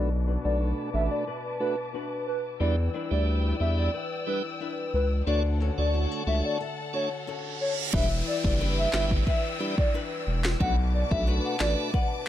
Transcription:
0.00 0.37 B1 loud
0.00 2.60 B2 medium
0.00 0.26 D4 medium
0.00 0.28 B4 medium
0.00 2.58 B4 medium
0.00 2.58 A5 medium
0.00 2.58 D6 medium
0.27 1.93 D4 medium
0.27 0.59 F#4 medium
0.27 1.27 B4 medium
0.45 0.73 B1 medium
0.45 0.90 A3 medium
0.45 0.90 D4 medium
0.45 0.90 F#4 medium
0.45 0.90 B4 medium
0.45 0.55 D5 medium
0.60 1.59 F#4 medium
0.94 1.09 A1 loud
0.94 1.25 A3 medium
0.94 1.25 D4 medium
0.94 1.25 F#4 medium
0.94 1.25 B4 medium
0.94 1.06 E5 medium
1.11 1.22 D5 medium
1.27 1.95 B4 medium
1.60 1.76 A3 medium
1.60 1.76 D4 medium
1.60 1.76 F#4 medium
1.60 1.93 F#4 medium
1.60 1.72 B4 medium
1.60 1.76 B4 medium
1.94 2.93 D4 medium
1.94 2.68 F#4 medium
1.94 2.95 B4 medium
2.27 2.39 B4 medium
2.60 2.89 E2 medium
2.60 5.27 E3 medium
2.60 2.76 G3 medium
2.60 2.76 D4 medium
2.60 2.76 E4 medium
2.60 2.76 B4 loud
2.60 2.73 D5 medium
2.60 5.25 D5 medium
2.60 5.25 G5 medium
2.60 5.25 E6 medium
2.94 4.60 D4 medium
2.94 3.26 E4 medium
2.94 3.93 B4 medium
3.11 3.53 D2 medium
3.11 3.56 G3 medium
3.11 3.56 D4 medium
3.11 3.57 E4 medium
3.11 3.57 B4 medium
3.11 3.23 D5 medium
3.27 4.26 E4 medium
3.60 3.89 E2 loud
3.60 3.91 G3 medium
3.60 3.91 D4 medium
3.60 3.91 E4 medium
3.60 3.91 B4 medium
3.60 3.73 E5 medium
3.78 3.89 D5 medium
3.94 4.61 B4 medium
4.27 4.42 G3 medium
4.27 4.43 D4 medium
4.27 4.43 E4 medium
4.27 4.60 E4 medium
4.27 4.43 B4 medium
4.27 4.40 B4 medium
4.60 5.60 D4 medium
4.60 5.34 E4 medium
4.60 5.35 B4 medium
4.94 5.22 C#2 medium
4.94 5.06 B4 medium
5.27 5.71 D2 loud
5.27 7.93 D3 medium
5.27 5.42 A3 medium
5.27 5.43 D4 medium
5.27 5.43 F#4 medium
5.27 7.91 A4 medium
5.27 5.43 C#5 loud
5.27 5.39 D5 medium
5.27 7.91 F#5 medium
5.27 7.91 A5 medium
5.60 7.26 C#4 medium
5.60 5.93 F#4 medium
5.60 6.59 A4 medium
5.78 6.07 D2 loud
5.78 6.23 A3 medium
5.78 6.23 D4 medium
5.78 6.23 F#4 medium
5.78 6.24 C#5 medium
5.78 5.89 D5 medium
5.94 6.11 E4 medium
6.11 6.93 F#4 medium
6.27 6.42 C#2 medium
6.27 6.58 A3 medium
6.27 6.58 D4 medium
6.27 6.58 F#4 medium
6.27 6.58 C#5 medium
6.27 6.39 E5 medium
6.45 6.56 D5 medium
6.60 7.27 A4 medium
6.60 reverse cymbal medium
6.93 7.09 A3 medium
6.93 7.09 D4 medium
6.93 7.09 F#4 medium
6.93 7.27 F#4 medium
6.93 7.09 C#5 medium
6.93 7.06 C#5 medium
7.27 8.01 C#4 medium
7.27 8.01 F#4 medium
7.27 8.02 A4 medium
7.61 7.73 C#5 medium
7.93 8.22 E1 loud
7.93 10.60 E3 medium
7.93 8.09 G3 loud
7.93 8.09 D4 medium
7.93 8.09 E4 medium
7.93 8.09 B4 loud
7.93 10.58 D5 medium
7.93 8.06 E5 medium
7.93 10.58 G5 medium
7.93 10.58 E6 medium
7.93 kick loud
7.93 downlifter medium
8.27 8.39 D5 medium
8.44 8.87 F#1 medium
8.44 8.90 G3 medium
8.44 8.90 D4 medium
8.44 8.90 E4 medium
8.44 8.90 B4 medium
8.44 8.56 D5 medium
8.44 kick loud
8.60 9.93 D4 medium
8.60 8.93 E4 medium
8.60 9.27 B4 medium
8.78 8.89 E5 medium
8.93 9.22 G1 loud
8.93 9.24 G3 medium
8.93 9.24 D4 medium
8.93 9.24 E4 medium
8.93 9.59 E4 medium
8.93 9.24 B4 medium
8.93 9.06 E5 medium
8.93 snare loud
8.93 clap medium
9.11 kick loud
9.27 9.95 B4 medium
9.27 9.40 E5 medium
9.27 kick medium
9.60 9.76 G3 medium
9.60 9.76 D4 medium
9.60 9.76 E4 medium
9.60 9.93 E4 medium
9.60 9.76 B4 medium
9.78 9.89 D5 medium
9.78 kick medium
9.94 11.27 D4 medium
9.94 10.68 E4 medium
9.94 11.28 B4 medium
10.27 10.56 E1 medium
10.44 snare loud
10.44 clap medium
10.60 11.04 B1 loud
10.60 12.28 B2 medium
10.60 10.76 A3 loud
10.60 10.76 D4 medium
10.60 10.76 F#4 medium
10.60 10.76 B4 loud
10.60 12.28 B4 medium
10.60 10.73 F#5 loud
10.60 12.28 A5 medium
10.60 12.28 D6 medium
10.60 kick loud
10.94 11.06 D5 medium
11.11 11.40 B1 loud
11.11 11.56 A3 medium
11.11 11.56 D4 medium
11.11 11.57 F#4 medium
11.11 11.57 B4 medium
11.11 11.22 E5 medium
11.11 kick loud
11.27 12.28 D4 medium
11.27 11.59 F#4 medium
11.27 11.93 B4 medium
11.45 11.56 F#5 medium
11.60 11.76 A1 loud
11.60 11.91 A3 medium
11.60 11.91 D4 medium
11.60 11.91 F#4 medium
11.60 12.26 F#4 medium
11.60 11.91 B4 medium
11.60 11.73 D5 medium
11.60 snare loud
11.60 clap loud
11.94 12.28 B4 medium
11.94 12.06 F#5 medium
11.94 kick medium

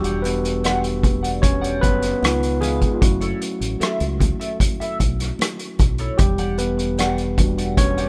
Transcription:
0.00 1.79 E1 medium
0.00 0.22 G3 medium
0.00 0.99 D4 soft
0.00 1.00 F#4 medium
0.00 0.24 G4 medium
0.04 0.24 G4 medium
0.04 0.25 D5 medium
0.04 0.25 F#5 medium
0.04 closed hi-hat soft
0.22 1.39 B3 medium
0.22 1.46 B4 medium
0.22 muted clean electric guitar stroke soft
0.22 closed hi-hat medium
0.22 muted conga soft
0.44 muted clean electric guitar stroke soft
0.44 closed hi-hat medium
0.64 0.86 G4 medium
0.64 0.86 D5 medium
0.64 0.86 F#5 medium
0.64 cross-stick medium
0.64 closed hi-hat medium
0.64 muted conga soft
0.64 high conga soft
0.84 closed hi-hat soft
1.03 muted clean electric guitar stroke soft
1.03 kick medium
1.03 closed hi-hat medium
1.03 muted conga soft
1.03 high conga medium
1.03 low conga medium
1.23 1.41 G4 soft
1.23 1.40 D5 soft
1.23 1.40 F#5 soft
1.23 closed hi-hat medium
1.42 1.80 C#4 medium
1.42 1.83 C#5 medium
1.42 muted clean electric guitar stroke soft
1.42 kick medium
1.42 closed hi-hat medium
1.42 muted conga soft
1.42 high conga medium
1.61 1.80 G4 soft
1.61 1.81 D5 medium
1.61 1.81 F#5 medium
1.61 closed hi-hat soft
1.81 2.13 F#1 medium
1.81 2.21 B3 medium
1.81 2.64 B4 loud
1.81 muted clean electric guitar stroke soft
1.81 kick medium
1.81 closed hi-hat medium
1.81 muted conga soft
1.81 high conga medium
2.02 muted clean electric guitar stroke soft
2.02 cross-stick soft
2.02 closed hi-hat medium
2.21 2.83 C#2 medium
2.21 2.98 B3 soft
2.21 2.98 D#4 soft
2.21 2.92 F4 medium
2.21 muted clean electric guitar stroke soft
2.21 cross-stick loud
2.21 closed hi-hat medium
2.21 muted conga soft
2.21 high conga medium
2.43 closed hi-hat soft
2.61 2.93 G#3 medium
2.61 2.95 G#4 medium
2.61 2.79 G#4 medium
2.61 2.79 B4 medium
2.61 2.79 F5 medium
2.61 closed hi-hat medium
2.61 muted conga soft
2.61 low conga medium
2.81 muted clean electric guitar stroke soft
2.81 kick medium
2.81 closed hi-hat soft
2.94 3.01 F4 medium
3.01 3.32 F#1 medium
3.01 4.57 F#3 medium
3.01 4.17 A3 medium
3.01 4.17 C#4 soft
3.01 4.17 E4 medium
3.01 4.56 F#4 medium
3.01 muted clean electric guitar stroke soft
3.01 kick loud
3.01 closed hi-hat medium
3.01 muted conga soft
3.21 3.39 E4 medium
3.21 3.40 A4 medium
3.21 3.40 C#5 medium
3.21 closed hi-hat soft
3.40 muted clean electric guitar stroke soft
3.40 closed hi-hat medium
3.61 3.76 A1 medium
3.61 muted clean electric guitar stroke soft
3.61 closed hi-hat medium
3.80 4.02 E4 medium
3.80 4.02 A4 medium
3.80 4.03 E5 medium
3.80 muted fingered electric bass stroke soft
3.80 cross-stick medium
3.80 closed hi-hat medium
3.80 muted conga soft
3.80 high conga soft
4.00 4.31 C#2 medium
4.00 closed hi-hat soft
4.20 muted clean electric guitar stroke soft
4.20 kick medium
4.20 closed hi-hat medium
4.20 high conga medium
4.20 low conga medium
4.40 4.58 E4 soft
4.40 4.57 A4 soft
4.40 4.57 E5 soft
4.40 closed hi-hat medium
4.60 muted clean electric guitar stroke soft
4.60 kick medium
4.60 closed hi-hat medium
4.60 muted conga soft
4.60 high conga medium
4.80 4.98 E4 medium
4.80 4.99 A4 medium
4.80 5.00 E5 medium
4.80 muted fingered electric bass stroke soft
4.80 closed hi-hat soft
4.99 5.31 B1 medium
4.99 muted clean electric guitar stroke soft
4.99 kick medium
4.99 closed hi-hat medium
4.99 muted conga soft
4.99 high conga medium
5.20 muted clean electric guitar stroke soft
5.20 cross-stick soft
5.20 closed hi-hat medium
5.39 muted clean electric guitar stroke soft
5.39 cross-stick loud
5.39 closed hi-hat medium
5.39 muted conga soft
5.39 high conga medium
5.59 muted clean electric guitar stroke soft
5.59 closed hi-hat soft
5.79 6.10 B1 medium
5.79 kick medium
5.79 closed hi-hat medium
5.79 muted conga soft
5.79 low conga medium
5.98 6.22 E4 medium
5.98 6.18 A4 medium
5.98 6.19 C#5 medium
5.98 closed hi-hat soft
6.18 8.09 E1 medium
6.18 6.56 G3 medium
6.18 6.59 G4 medium
6.18 muted clean electric guitar stroke soft
6.18 kick loud
6.18 closed hi-hat medium
6.18 muted conga soft
6.38 6.57 G4 soft
6.38 6.58 D5 medium
6.38 6.58 F#5 medium
6.38 closed hi-hat soft
6.58 7.74 B3 medium
6.58 7.81 B4 medium
6.58 muted clean electric guitar stroke soft
6.58 closed hi-hat medium
6.58 muted conga soft
6.78 muted clean electric guitar stroke soft
6.78 closed hi-hat soft
6.98 7.20 G4 medium
6.98 7.20 D5 medium
6.98 7.20 F#5 medium
6.98 cross-stick medium
6.98 closed hi-hat medium
6.98 high conga soft
7.18 closed hi-hat soft
7.37 7.90 G3 soft
7.37 7.91 D4 soft
7.37 7.91 F#4 medium
7.37 muted clean electric guitar stroke soft
7.37 kick medium
7.37 closed hi-hat medium
7.37 muted conga soft
7.37 high conga medium
7.37 low conga medium
7.58 7.76 G4 soft
7.58 7.75 D5 soft
7.58 7.75 F#5 soft
7.58 closed hi-hat soft
7.77 7.96 C#4 medium
7.77 7.96 C#5 loud
7.77 muted clean electric guitar stroke soft
7.77 kick medium
7.77 closed hi-hat medium
7.77 muted conga soft
7.77 high conga medium
7.97 8.09 G4 soft
7.97 8.09 D5 medium
7.97 8.09 F#5 medium
7.97 closed hi-hat soft

